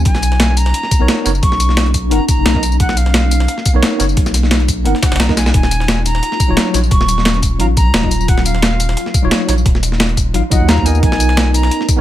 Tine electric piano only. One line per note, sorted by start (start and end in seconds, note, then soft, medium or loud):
0.99 1.23 B3 medium
0.99 1.23 D#4 medium
0.99 1.24 A#4 medium
0.99 1.24 C#5 loud
1.24 1.29 B3 medium
1.24 1.30 D#4 medium
1.24 1.30 A#4 medium
1.24 1.31 C#5 medium
2.10 2.18 B3 medium
2.10 2.18 D#4 medium
2.10 2.19 A#4 medium
2.10 2.19 F#5 medium
2.54 2.61 B3 medium
2.54 2.61 D#4 medium
2.54 2.61 A#4 medium
2.54 2.62 D#5 medium
3.74 3.97 B3 medium
3.74 3.98 D#4 medium
3.74 3.98 A#4 medium
3.74 3.99 C#5 loud
3.99 4.04 B3 medium
3.99 4.04 D#4 medium
3.99 4.04 A#4 medium
3.99 4.05 C#5 medium
4.84 4.92 B3 medium
4.84 4.93 D#4 medium
4.84 4.93 A#4 medium
4.84 4.93 F#5 medium
5.28 5.35 B3 medium
5.28 5.35 D#4 medium
5.28 5.36 A#4 medium
5.28 5.36 D#5 medium
6.48 6.72 F#3 medium
6.48 6.72 D#4 medium
6.48 6.73 F4 medium
6.48 6.73 C#5 loud
6.73 6.78 F#3 medium
6.73 6.79 D#4 medium
6.73 6.79 F4 medium
6.73 6.79 C#5 medium
7.59 7.66 F#3 medium
7.59 7.67 D#4 medium
7.59 7.67 F4 medium
7.59 7.68 F5 medium
8.02 8.09 F#3 medium
8.02 8.09 D#4 medium
8.02 8.10 F4 medium
8.02 8.10 D#5 medium
9.22 9.46 F#3 medium
9.22 9.46 D#4 medium
9.22 9.47 F4 medium
9.22 9.47 C#5 loud
9.47 9.52 F#3 medium
9.47 9.53 D#4 medium
9.47 9.53 F4 medium
9.47 9.54 C#5 medium
10.33 10.41 F#3 medium
10.33 10.41 D#4 medium
10.33 10.42 F4 medium
10.33 10.42 F5 medium
10.50 10.66 F#3 medium
10.50 10.66 D#4 medium
10.50 10.67 F4 medium
10.50 10.67 D#5 loud
10.68 10.83 F#3 medium
10.68 10.84 D#4 medium
10.68 10.84 F4 medium
10.68 10.85 F5 loud
10.83 11.94 B3 loud
10.83 11.95 D#4 medium
10.83 11.96 A#4 medium
10.88 11.97 D#5 loud
11.96 12.01 B3 medium
11.96 12.01 D#4 medium